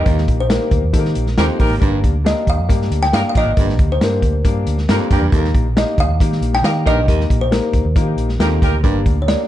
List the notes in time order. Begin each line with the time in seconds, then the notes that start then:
Already playing: D#5
0.06 D#2 A#3 D#4 G4 A#4, kick, closed hi-hat
0.18 snare
0.28 A#1, kick, closed hi-hat
0.40 C5
0.49 A#3 D#4 G4 A#4, snare, closed hi-hat
0.71 D2, kick, closed hi-hat
0.83 D#2
0.93 D#3 A#3 D#4 G4 A4, kick, closed hi-hat
0.99 A#4
1.05 snare
1.15 A#1, closed hi-hat
1.26 snare
1.37 D#2 F2 A#3 D#4 G4 A#4 C5, snare, closed hi-hat
1.60 A1 D#2 D#4 G4 A#4, kick, open hi-hat
1.70 G#1
1.80 G1 G2 A#3 D4 G4 A#4, kick, closed hi-hat
2.03 D2, kick, closed hi-hat
2.24 A#3 D4 G4 A4 D#5, snare, closed hi-hat
2.30 A#4
2.47 D#2 F5, kick, closed hi-hat
2.58 F2
2.68 G2 A#3 D4 G4 A#4, kick, closed hi-hat
2.81 snare
2.91 D2, closed hi-hat
3.02 G5, snare
3.13 G2 A#3 D4 G4 A#4 F5, snare, closed hi-hat
3.29 F5
3.35 A1 A#2 D4 G4 A#4 D#5, kick, closed hi-hat
3.45 G#1
3.57 G1 G2 D3 A#3 G4 A#4, kick, closed hi-hat
3.69 snare
3.79 D2, kick, closed hi-hat
3.92 C5
4.01 G2 A#3 D4 G4 A#4 C5, snare, closed hi-hat
4.22 D2, kick, closed hi-hat
4.44 G2 A#3 D4 G4 A#4, kick, closed hi-hat
4.66 D2, closed hi-hat
4.78 snare
4.89 F2 G2 A#3 D4 G4 A#4, snare, closed hi-hat
5.11 F2 G2 D4 G4 A#4, kick, closed hi-hat
5.21 E2
5.32 D#2 A#3 D#4 G4 A4, kick, closed hi-hat
5.38 A#4
5.44 snare
5.54 A#1, kick, closed hi-hat
5.76 A#3 D#4 G4 A#4 D#5, snare, closed hi-hat
5.98 D2 F5, kick, closed hi-hat
6.08 D#2
6.20 D#3 A#3 D#4 G4 A#4, kick, closed hi-hat
6.32 snare
6.41 A#1, closed hi-hat
6.53 G5, snare
6.62 D#3 A#3 D#4 G4 A#4 F5, snare, closed hi-hat
6.85 A#1 G2 D#4 G4 A#4 D#5, kick, closed hi-hat
7.08 D#2 A#3 D#4 G4 A#4, kick, closed hi-hat
7.20 snare
7.30 A#1, kick, closed hi-hat
7.41 C5
7.51 A#3 D#4 G4 A#4, snare, closed hi-hat
7.73 D2, kick, closed hi-hat
7.85 D#2
7.96 D#3 A#3 D#4 F4 A#4, kick, closed hi-hat
8.01 G4
8.16 A#1, closed hi-hat
8.29 snare
8.39 D#2 F2 A#3 D#4 F#4 G4 A#4, snare, closed hi-hat
8.45 G4
8.61 D2 D#2 D#4 G4 A#4, kick, closed hi-hat
8.83 G1 G2 A#3 D4 G4 A#4, kick, closed hi-hat
9.06 D2, kick, closed hi-hat
9.22 C#5
9.28 A#3 D4 G4 A#4 D5, snare, closed hi-hat